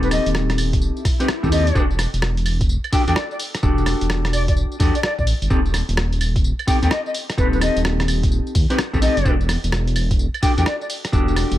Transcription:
Already playing: D#1 C4 D#4 G4 A4
0.03 B4, closed hi-hat, tambourine
0.11 D#5, cross-stick, open hi-hat, tambourine, claves
0.26 D#1, closed hi-hat, tambourine
0.35 cross-stick, tambourine
0.50 cross-stick, closed hi-hat, tambourine
0.58 open hi-hat, tambourine, claves
0.73 kick, closed hi-hat, tambourine
0.81 tambourine, swell
0.97 tambourine
1.05 kick, cross-stick, open hi-hat, tambourine
1.20 C4 D#4 G4 B4, closed hi-hat, tambourine
1.28 cross-stick, tambourine
1.43 D#2 C4 D#4 G4 A4, kick, tambourine
1.52 C4 D#4 G4 A4 D#5, open hi-hat, tambourine
1.67 closed hi-hat, tambourine
1.75 E1 D4 F#4 G4 A4, kick, tambourine
1.91 tambourine
1.99 cross-stick, open hi-hat, tambourine, claves
2.14 E1, closed hi-hat, tambourine
2.22 cross-stick, tambourine
2.37 closed hi-hat, tambourine
2.46 open hi-hat, tambourine, claves
2.61 kick, closed hi-hat, tambourine
2.69 tambourine
2.84 tambourine, claves
2.92 D4 F#4 G4 A4 G5, kick, open hi-hat, tambourine
3.07 E2 D4 F#4 G4 A4 G5, closed hi-hat, tambourine
3.16 D5, cross-stick, tambourine
3.31 D5, tambourine
3.39 open hi-hat, tambourine
3.55 cross-stick, closed hi-hat, tambourine
3.63 E1 D4 F#4 G4 A4, kick, tambourine
3.78 tambourine
3.86 cross-stick, open hi-hat, tambourine, claves
4.01 E1, closed hi-hat, tambourine
4.10 cross-stick, tambourine
4.25 cross-stick, closed hi-hat, tambourine
4.33 D5, open hi-hat, tambourine, claves
4.48 D5, kick, closed hi-hat, tambourine
4.57 tambourine
4.72 tambourine
4.80 E2 D4 F#4 G4 A4, kick, open hi-hat, tambourine
4.95 D5, closed hi-hat, tambourine
5.03 D5, cross-stick, tambourine
5.18 A1 D5, kick, tambourine
5.27 open hi-hat, tambourine
5.42 G1, closed hi-hat, tambourine
5.50 D#1 C4 D#4 G4 A4, kick, tambourine
5.66 tambourine
5.74 cross-stick, open hi-hat, tambourine, claves
5.89 D#1, closed hi-hat, tambourine
5.97 cross-stick, tambourine
6.13 closed hi-hat, tambourine
6.21 open hi-hat, tambourine, claves
6.36 kick, closed hi-hat, tambourine
6.44 tambourine
6.59 tambourine, claves
6.67 C4 D#4 G4 A4 G5, kick, open hi-hat, tambourine
6.82 D#2 C4 D#4 G4 A4 G5, closed hi-hat, tambourine
6.91 D#5, cross-stick, tambourine
7.06 D#5, tambourine
7.14 open hi-hat, tambourine
7.30 cross-stick, closed hi-hat, tambourine
7.37 D#1 C4 D#4 G4 A4 B4, kick, tambourine
7.53 B4, tambourine
7.61 D#5, cross-stick, open hi-hat, tambourine, claves
7.76 D#1, closed hi-hat, tambourine
7.85 cross-stick, tambourine
8.00 cross-stick, closed hi-hat, tambourine
8.08 open hi-hat, tambourine, claves
8.23 kick, closed hi-hat, tambourine
8.32 tambourine
8.47 tambourine
8.55 D#2, kick, open hi-hat, tambourine
8.70 C4 D#4 G4 B4, closed hi-hat, tambourine
8.79 cross-stick, tambourine
8.93 A1 C4 D#4 G4 A4, kick, tambourine
9.02 C4 D#4 G4 A4 D#5, open hi-hat, tambourine
9.17 F#1, closed hi-hat, tambourine
9.25 E1 D4 F#4 G4 A4, kick, tambourine
9.41 tambourine
9.49 cross-stick, open hi-hat, tambourine, claves
9.64 E1, closed hi-hat, tambourine
9.72 cross-stick, tambourine
9.88 closed hi-hat, tambourine
9.96 open hi-hat, tambourine, claves
10.11 kick, closed hi-hat, tambourine
10.19 tambourine
10.34 tambourine, claves
10.42 D4 F#4 G4 A4 G5, kick, open hi-hat, tambourine
10.57 E2 D4 F#4 G4 A4 G5, closed hi-hat, tambourine
10.66 D5, cross-stick, tambourine
10.81 D5, tambourine
10.90 open hi-hat, tambourine
11.05 cross-stick, closed hi-hat, tambourine
11.12 E1 D4 F#4 G4 A4, kick, tambourine
11.28 tambourine
11.36 cross-stick, open hi-hat, tambourine, claves
11.51 E1, closed hi-hat, tambourine

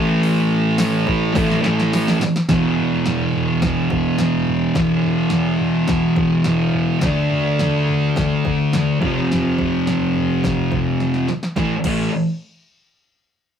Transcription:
Already playing: A2 E3 A3
0.23 open hi-hat
0.78 snare, open hi-hat
1.07 kick
1.34 A2 E3 A3, kick, snare, open hi-hat
1.51 snare
1.62 E3 A3, snare
1.67 A2
1.80 snare
1.93 snare, open hi-hat
2.08 snare
2.21 snare
2.36 snare
2.49 E2 B2, kick, snare, floor tom
2.54 E3
2.78 floor tom
3.05 snare, floor tom
3.33 floor tom
3.62 kick, snare, floor tom
3.90 kick, floor tom
4.18 snare, floor tom
4.47 floor tom
4.75 E2 B2, kick, snare, floor tom
4.80 E3
5.03 floor tom
5.30 snare, floor tom
5.59 floor tom
5.87 kick, snare, floor tom
6.16 kick, floor tom
6.44 snare, floor tom
6.72 floor tom
7.01 D3 A3, kick, snare, floor tom
7.06 D4
7.30 floor tom
7.59 snare, floor tom
7.88 floor tom
8.16 kick, snare, floor tom
8.45 kick, floor tom
8.73 snare, floor tom
9.00 F2 C3, kick, floor tom
9.06 F3
9.32 snare, floor tom
9.59 kick, floor tom
9.87 snare, floor tom
10.15 floor tom
10.44 kick, snare, floor tom
10.72 kick, floor tom
11.00 snare
11.14 snare
11.28 snare
11.43 snare
11.56 A2 E3 A3, kick, snare
11.84 A2 E3 A3, kick, crash

